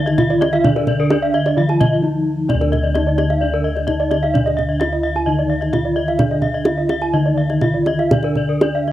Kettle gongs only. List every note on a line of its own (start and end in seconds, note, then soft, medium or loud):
0.00 1.07 D3 medium
0.00 0.14 D4 medium
0.18 0.26 D#4 soft
0.64 1.99 D4 medium
1.11 1.19 D#4 soft
1.57 2.92 D3 medium
2.04 2.12 D#4 soft
2.49 3.84 D4 medium
2.54 5.25 D2 medium
2.96 3.04 D#4 soft
3.88 3.96 D#4 soft
4.35 5.69 D4 medium
4.81 4.89 D#4 soft
5.27 6.62 D3 medium
5.73 5.81 D#4 soft
6.19 7.58 D4 medium
6.65 6.73 D#4 soft
7.13 8.58 D3 medium
7.62 7.70 D#4 medium
8.11 8.93 D4 medium
8.62 8.70 D#4 medium